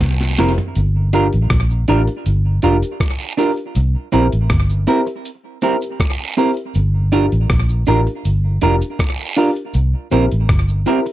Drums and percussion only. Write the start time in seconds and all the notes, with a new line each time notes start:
0.01 kick, snare, closed hi-hat, long guiro
0.21 snare, cabasa
0.38 snare, open hi-hat, cabasa
0.58 closed hi-hat, floor tom
0.76 closed hi-hat, cabasa
1.13 closed hi-hat, cabasa
1.33 closed hi-hat
1.50 kick, cross-stick, closed hi-hat
1.70 cabasa
1.88 closed hi-hat, cabasa
2.07 closed hi-hat
2.26 closed hi-hat, cabasa
2.62 closed hi-hat, cabasa
2.82 closed hi-hat, cabasa
3.00 kick, cross-stick, closed hi-hat, long guiro
3.20 cabasa
3.38 open hi-hat, cabasa
3.57 closed hi-hat
3.75 closed hi-hat, cabasa
4.12 closed hi-hat, cabasa
4.32 closed hi-hat
4.50 kick, cross-stick, closed hi-hat
4.70 cabasa
4.87 closed hi-hat, cabasa
5.07 closed hi-hat
5.25 closed hi-hat, cabasa
5.62 closed hi-hat, cabasa
5.82 closed hi-hat, cabasa
6.00 kick, cross-stick, closed hi-hat, long guiro
6.20 cabasa
6.37 open hi-hat, cabasa
6.57 closed hi-hat
6.74 closed hi-hat, cabasa
7.12 closed hi-hat, cabasa
7.32 closed hi-hat
7.50 kick, cross-stick, closed hi-hat
7.69 cabasa
7.86 closed hi-hat, cabasa
8.07 closed hi-hat
8.25 closed hi-hat, cabasa
8.61 closed hi-hat, cabasa
8.81 closed hi-hat, cabasa
8.99 kick, cross-stick, closed hi-hat, long guiro
9.19 cabasa
9.37 open hi-hat, cabasa
9.56 closed hi-hat
9.74 closed hi-hat, cabasa
10.11 closed hi-hat, cabasa
10.32 closed hi-hat
10.49 kick, cross-stick, closed hi-hat
10.68 cabasa
10.86 closed hi-hat, cabasa
11.06 closed hi-hat